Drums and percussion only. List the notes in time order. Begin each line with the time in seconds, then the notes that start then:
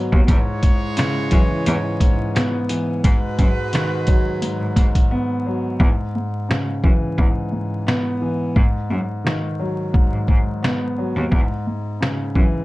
0.13 kick
0.28 kick, closed hi-hat
0.63 kick, closed hi-hat
0.97 snare, closed hi-hat
1.31 kick, closed hi-hat
1.66 closed hi-hat
2.00 kick, closed hi-hat
2.36 snare, closed hi-hat
2.69 closed hi-hat
3.04 kick, closed hi-hat
3.39 kick, closed hi-hat
3.73 snare, closed hi-hat
4.07 kick, closed hi-hat
4.42 closed hi-hat
4.76 kick, closed hi-hat
4.95 kick, closed hi-hat
5.80 kick
6.51 snare
6.84 kick
7.18 kick
7.88 snare
8.56 kick
9.27 snare
9.94 kick
10.28 kick
10.64 snare
11.32 kick
12.03 snare
12.35 kick